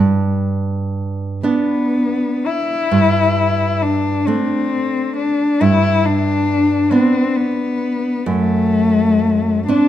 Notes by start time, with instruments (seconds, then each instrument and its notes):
Already playing: nylon-string guitar G2
1.43 nylon-string guitar B3 D4, cello B3
2.46 cello E4
2.91 nylon-string guitar G2
3.82 cello D4
4.27 nylon-string guitar A3 D4, cello C4
5.17 cello D4
5.61 nylon-string guitar G2, cello E4
6.05 cello D4
6.91 nylon-string guitar B3 D4, cello C4
7.36 cello B3
8.26 nylon-string guitar F#2, cello A3
9.68 nylon-string guitar C4 D4, cello D4